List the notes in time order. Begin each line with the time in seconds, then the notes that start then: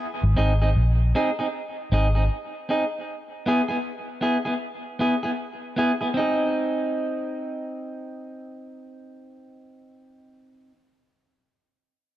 0.23 G#1
0.36 G#1 C4 D#4 G#4
0.62 C4 D#4 G#4
0.76 A#1
1.15 C4 D#4 G#4
1.39 C4 D#4 G#4
1.92 G#1 C4 D#4 G#4
2.15 C4 D#4 G#4
2.69 C4 D#4 G#4
3.46 B3 E4 G#4
3.68 B3 E4 G#4
4.21 B3 E4 G#4
4.45 B3 E4 G#4
4.99 B3 E4 G#4
5.23 B3 E4 G#4
5.76 B3 E4 G#4
6.01 B3 E4 G#4
6.14 C4 D#4
6.19 G#4